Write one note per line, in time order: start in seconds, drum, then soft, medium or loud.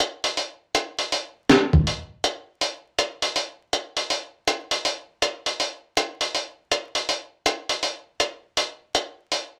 0.00 closed hi-hat medium
0.24 open hi-hat soft
0.37 open hi-hat soft
0.75 closed hi-hat medium
0.99 open hi-hat soft
1.12 open hi-hat medium
1.49 snare soft
1.49 closed hi-hat medium
1.73 kick medium
1.87 open hi-hat soft
2.24 closed hi-hat medium
2.61 open hi-hat medium
2.99 closed hi-hat medium
3.22 open hi-hat soft
3.36 open hi-hat soft
3.73 closed hi-hat medium
3.97 open hi-hat soft
4.10 open hi-hat soft
4.48 closed hi-hat medium
4.71 open hi-hat soft
4.85 open hi-hat medium
5.22 closed hi-hat medium
5.46 open hi-hat soft
5.60 open hi-hat soft
5.97 closed hi-hat medium
6.21 open hi-hat soft
6.35 open hi-hat soft
6.72 closed hi-hat medium
6.95 open hi-hat soft
7.09 open hi-hat medium
7.46 closed hi-hat medium
7.69 open hi-hat soft
7.83 open hi-hat soft
8.20 closed hi-hat medium
8.57 open hi-hat medium
8.95 closed hi-hat medium
9.32 open hi-hat soft